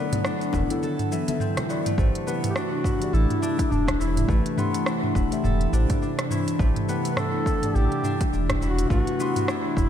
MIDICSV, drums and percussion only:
0, 0, Header, 1, 2, 480
1, 0, Start_track
1, 0, Tempo, 576923
1, 1647, Time_signature, 4, 2, 24, 8
1, 8232, End_track
2, 0, Start_track
2, 0, Title_t, "Drums"
2, 105, Note_on_c, 9, 42, 57
2, 105, Note_on_c, 9, 45, 75
2, 105, Note_on_c, 9, 63, 35
2, 105, Note_on_c, 9, 64, 74
2, 111, Note_on_c, 9, 82, 31
2, 188, Note_off_c, 9, 42, 0
2, 188, Note_off_c, 9, 45, 0
2, 188, Note_off_c, 9, 64, 0
2, 189, Note_off_c, 9, 63, 0
2, 195, Note_off_c, 9, 82, 0
2, 204, Note_on_c, 9, 37, 77
2, 211, Note_on_c, 9, 82, 41
2, 287, Note_off_c, 9, 37, 0
2, 294, Note_off_c, 9, 82, 0
2, 344, Note_on_c, 9, 42, 28
2, 351, Note_on_c, 9, 82, 28
2, 427, Note_off_c, 9, 42, 0
2, 434, Note_off_c, 9, 82, 0
2, 439, Note_on_c, 9, 60, 65
2, 443, Note_on_c, 9, 45, 73
2, 445, Note_on_c, 9, 63, 69
2, 446, Note_on_c, 9, 36, 102
2, 449, Note_on_c, 9, 82, 68
2, 522, Note_off_c, 9, 60, 0
2, 526, Note_off_c, 9, 45, 0
2, 528, Note_off_c, 9, 63, 0
2, 529, Note_off_c, 9, 36, 0
2, 532, Note_off_c, 9, 82, 0
2, 585, Note_on_c, 9, 42, 57
2, 592, Note_on_c, 9, 82, 31
2, 669, Note_off_c, 9, 42, 0
2, 675, Note_off_c, 9, 82, 0
2, 688, Note_on_c, 9, 63, 53
2, 690, Note_on_c, 9, 82, 41
2, 771, Note_off_c, 9, 63, 0
2, 773, Note_off_c, 9, 82, 0
2, 826, Note_on_c, 9, 42, 31
2, 826, Note_on_c, 9, 45, 75
2, 833, Note_on_c, 9, 82, 27
2, 909, Note_off_c, 9, 42, 0
2, 909, Note_off_c, 9, 45, 0
2, 916, Note_off_c, 9, 82, 0
2, 932, Note_on_c, 9, 82, 71
2, 1015, Note_off_c, 9, 82, 0
2, 1066, Note_on_c, 9, 42, 58
2, 1068, Note_on_c, 9, 63, 66
2, 1072, Note_on_c, 9, 82, 30
2, 1149, Note_off_c, 9, 42, 0
2, 1151, Note_off_c, 9, 63, 0
2, 1156, Note_off_c, 9, 82, 0
2, 1166, Note_on_c, 9, 45, 75
2, 1172, Note_on_c, 9, 82, 38
2, 1249, Note_off_c, 9, 45, 0
2, 1256, Note_off_c, 9, 82, 0
2, 1308, Note_on_c, 9, 37, 72
2, 1308, Note_on_c, 9, 42, 45
2, 1311, Note_on_c, 9, 64, 84
2, 1315, Note_on_c, 9, 82, 27
2, 1392, Note_off_c, 9, 37, 0
2, 1392, Note_off_c, 9, 42, 0
2, 1394, Note_off_c, 9, 64, 0
2, 1398, Note_off_c, 9, 82, 0
2, 1413, Note_on_c, 9, 82, 73
2, 1497, Note_off_c, 9, 82, 0
2, 1549, Note_on_c, 9, 42, 52
2, 1549, Note_on_c, 9, 45, 78
2, 1552, Note_on_c, 9, 63, 36
2, 1555, Note_on_c, 9, 82, 30
2, 1632, Note_off_c, 9, 42, 0
2, 1632, Note_off_c, 9, 45, 0
2, 1635, Note_off_c, 9, 63, 0
2, 1639, Note_off_c, 9, 82, 0
2, 1647, Note_on_c, 9, 36, 116
2, 1649, Note_on_c, 9, 45, 73
2, 1655, Note_on_c, 9, 82, 33
2, 1730, Note_off_c, 9, 36, 0
2, 1732, Note_off_c, 9, 45, 0
2, 1738, Note_off_c, 9, 82, 0
2, 1791, Note_on_c, 9, 42, 50
2, 1874, Note_off_c, 9, 42, 0
2, 1895, Note_on_c, 9, 82, 83
2, 1978, Note_off_c, 9, 82, 0
2, 2030, Note_on_c, 9, 42, 60
2, 2030, Note_on_c, 9, 45, 73
2, 2036, Note_on_c, 9, 82, 44
2, 2113, Note_off_c, 9, 42, 0
2, 2113, Note_off_c, 9, 45, 0
2, 2120, Note_off_c, 9, 82, 0
2, 2128, Note_on_c, 9, 37, 85
2, 2134, Note_on_c, 9, 82, 35
2, 2211, Note_off_c, 9, 37, 0
2, 2217, Note_off_c, 9, 82, 0
2, 2366, Note_on_c, 9, 36, 101
2, 2368, Note_on_c, 9, 45, 75
2, 2375, Note_on_c, 9, 82, 73
2, 2449, Note_off_c, 9, 36, 0
2, 2451, Note_off_c, 9, 45, 0
2, 2458, Note_off_c, 9, 82, 0
2, 2509, Note_on_c, 9, 42, 57
2, 2516, Note_on_c, 9, 82, 44
2, 2593, Note_off_c, 9, 42, 0
2, 2599, Note_off_c, 9, 82, 0
2, 2614, Note_on_c, 9, 82, 31
2, 2698, Note_off_c, 9, 82, 0
2, 2749, Note_on_c, 9, 42, 32
2, 2749, Note_on_c, 9, 45, 75
2, 2832, Note_off_c, 9, 42, 0
2, 2832, Note_off_c, 9, 45, 0
2, 2853, Note_on_c, 9, 82, 76
2, 2936, Note_off_c, 9, 82, 0
2, 2987, Note_on_c, 9, 36, 108
2, 2989, Note_on_c, 9, 42, 56
2, 2996, Note_on_c, 9, 82, 45
2, 3070, Note_off_c, 9, 36, 0
2, 3072, Note_off_c, 9, 42, 0
2, 3079, Note_off_c, 9, 82, 0
2, 3089, Note_on_c, 9, 45, 74
2, 3095, Note_on_c, 9, 82, 32
2, 3172, Note_off_c, 9, 45, 0
2, 3178, Note_off_c, 9, 82, 0
2, 3227, Note_on_c, 9, 36, 64
2, 3231, Note_on_c, 9, 37, 74
2, 3231, Note_on_c, 9, 42, 43
2, 3310, Note_off_c, 9, 36, 0
2, 3314, Note_off_c, 9, 37, 0
2, 3314, Note_off_c, 9, 42, 0
2, 3335, Note_on_c, 9, 82, 78
2, 3418, Note_off_c, 9, 82, 0
2, 3471, Note_on_c, 9, 42, 55
2, 3471, Note_on_c, 9, 45, 78
2, 3477, Note_on_c, 9, 82, 42
2, 3554, Note_off_c, 9, 42, 0
2, 3554, Note_off_c, 9, 45, 0
2, 3561, Note_off_c, 9, 82, 0
2, 3565, Note_on_c, 9, 36, 117
2, 3575, Note_on_c, 9, 82, 34
2, 3649, Note_off_c, 9, 36, 0
2, 3658, Note_off_c, 9, 82, 0
2, 3709, Note_on_c, 9, 42, 47
2, 3792, Note_off_c, 9, 42, 0
2, 3807, Note_on_c, 9, 45, 79
2, 3813, Note_on_c, 9, 82, 81
2, 3890, Note_off_c, 9, 45, 0
2, 3897, Note_off_c, 9, 82, 0
2, 3947, Note_on_c, 9, 42, 55
2, 3954, Note_on_c, 9, 82, 45
2, 4031, Note_off_c, 9, 42, 0
2, 4037, Note_off_c, 9, 82, 0
2, 4046, Note_on_c, 9, 37, 88
2, 4053, Note_on_c, 9, 82, 36
2, 4130, Note_off_c, 9, 37, 0
2, 4136, Note_off_c, 9, 82, 0
2, 4188, Note_on_c, 9, 45, 68
2, 4271, Note_off_c, 9, 45, 0
2, 4286, Note_on_c, 9, 36, 108
2, 4293, Note_on_c, 9, 82, 76
2, 4369, Note_off_c, 9, 36, 0
2, 4376, Note_off_c, 9, 82, 0
2, 4427, Note_on_c, 9, 42, 53
2, 4433, Note_on_c, 9, 82, 45
2, 4510, Note_off_c, 9, 42, 0
2, 4516, Note_off_c, 9, 82, 0
2, 4525, Note_on_c, 9, 45, 77
2, 4531, Note_on_c, 9, 82, 36
2, 4608, Note_off_c, 9, 45, 0
2, 4615, Note_off_c, 9, 82, 0
2, 4666, Note_on_c, 9, 42, 31
2, 4749, Note_off_c, 9, 42, 0
2, 4771, Note_on_c, 9, 82, 75
2, 4854, Note_off_c, 9, 82, 0
2, 4906, Note_on_c, 9, 42, 56
2, 4906, Note_on_c, 9, 45, 76
2, 4907, Note_on_c, 9, 36, 113
2, 4913, Note_on_c, 9, 82, 46
2, 4990, Note_off_c, 9, 42, 0
2, 4990, Note_off_c, 9, 45, 0
2, 4991, Note_off_c, 9, 36, 0
2, 4996, Note_off_c, 9, 82, 0
2, 5012, Note_on_c, 9, 82, 34
2, 5096, Note_off_c, 9, 82, 0
2, 5147, Note_on_c, 9, 37, 70
2, 5147, Note_on_c, 9, 42, 45
2, 5230, Note_off_c, 9, 37, 0
2, 5230, Note_off_c, 9, 42, 0
2, 5246, Note_on_c, 9, 45, 79
2, 5252, Note_on_c, 9, 82, 87
2, 5329, Note_off_c, 9, 45, 0
2, 5336, Note_off_c, 9, 82, 0
2, 5390, Note_on_c, 9, 42, 56
2, 5396, Note_on_c, 9, 82, 48
2, 5473, Note_off_c, 9, 42, 0
2, 5479, Note_off_c, 9, 82, 0
2, 5487, Note_on_c, 9, 36, 127
2, 5494, Note_on_c, 9, 82, 34
2, 5570, Note_off_c, 9, 36, 0
2, 5577, Note_off_c, 9, 82, 0
2, 5627, Note_on_c, 9, 42, 42
2, 5627, Note_on_c, 9, 45, 82
2, 5711, Note_off_c, 9, 42, 0
2, 5711, Note_off_c, 9, 45, 0
2, 5731, Note_on_c, 9, 82, 82
2, 5815, Note_off_c, 9, 82, 0
2, 5866, Note_on_c, 9, 42, 53
2, 5873, Note_on_c, 9, 82, 46
2, 5950, Note_off_c, 9, 42, 0
2, 5956, Note_off_c, 9, 82, 0
2, 5965, Note_on_c, 9, 37, 79
2, 5965, Note_on_c, 9, 45, 79
2, 5971, Note_on_c, 9, 82, 36
2, 6048, Note_off_c, 9, 37, 0
2, 6048, Note_off_c, 9, 45, 0
2, 6055, Note_off_c, 9, 82, 0
2, 6207, Note_on_c, 9, 36, 107
2, 6214, Note_on_c, 9, 82, 78
2, 6290, Note_off_c, 9, 36, 0
2, 6297, Note_off_c, 9, 82, 0
2, 6348, Note_on_c, 9, 42, 58
2, 6348, Note_on_c, 9, 45, 76
2, 6354, Note_on_c, 9, 82, 49
2, 6431, Note_off_c, 9, 42, 0
2, 6431, Note_off_c, 9, 45, 0
2, 6438, Note_off_c, 9, 82, 0
2, 6454, Note_on_c, 9, 82, 35
2, 6537, Note_off_c, 9, 82, 0
2, 6588, Note_on_c, 9, 42, 29
2, 6671, Note_off_c, 9, 42, 0
2, 6686, Note_on_c, 9, 45, 74
2, 6692, Note_on_c, 9, 82, 80
2, 6769, Note_off_c, 9, 45, 0
2, 6775, Note_off_c, 9, 82, 0
2, 6828, Note_on_c, 9, 42, 53
2, 6829, Note_on_c, 9, 36, 116
2, 6834, Note_on_c, 9, 82, 46
2, 6911, Note_off_c, 9, 42, 0
2, 6912, Note_off_c, 9, 36, 0
2, 6917, Note_off_c, 9, 82, 0
2, 6934, Note_on_c, 9, 82, 34
2, 7017, Note_off_c, 9, 82, 0
2, 7068, Note_on_c, 9, 36, 69
2, 7068, Note_on_c, 9, 37, 74
2, 7068, Note_on_c, 9, 42, 42
2, 7068, Note_on_c, 9, 45, 70
2, 7151, Note_off_c, 9, 36, 0
2, 7152, Note_off_c, 9, 37, 0
2, 7152, Note_off_c, 9, 42, 0
2, 7152, Note_off_c, 9, 45, 0
2, 7173, Note_on_c, 9, 82, 83
2, 7257, Note_off_c, 9, 82, 0
2, 7309, Note_on_c, 9, 42, 56
2, 7316, Note_on_c, 9, 82, 46
2, 7392, Note_off_c, 9, 42, 0
2, 7399, Note_off_c, 9, 82, 0
2, 7407, Note_on_c, 9, 36, 116
2, 7408, Note_on_c, 9, 45, 74
2, 7414, Note_on_c, 9, 82, 34
2, 7490, Note_off_c, 9, 36, 0
2, 7491, Note_off_c, 9, 45, 0
2, 7497, Note_off_c, 9, 82, 0
2, 7549, Note_on_c, 9, 42, 43
2, 7632, Note_off_c, 9, 42, 0
2, 7654, Note_on_c, 9, 82, 80
2, 7737, Note_off_c, 9, 82, 0
2, 7790, Note_on_c, 9, 42, 49
2, 7790, Note_on_c, 9, 45, 75
2, 7796, Note_on_c, 9, 82, 44
2, 7873, Note_off_c, 9, 42, 0
2, 7873, Note_off_c, 9, 45, 0
2, 7879, Note_off_c, 9, 82, 0
2, 7889, Note_on_c, 9, 37, 81
2, 7896, Note_on_c, 9, 82, 35
2, 7972, Note_off_c, 9, 37, 0
2, 7979, Note_off_c, 9, 82, 0
2, 8126, Note_on_c, 9, 36, 113
2, 8129, Note_on_c, 9, 45, 69
2, 8136, Note_on_c, 9, 82, 83
2, 8209, Note_off_c, 9, 36, 0
2, 8213, Note_off_c, 9, 45, 0
2, 8219, Note_off_c, 9, 82, 0
2, 8232, End_track
0, 0, End_of_file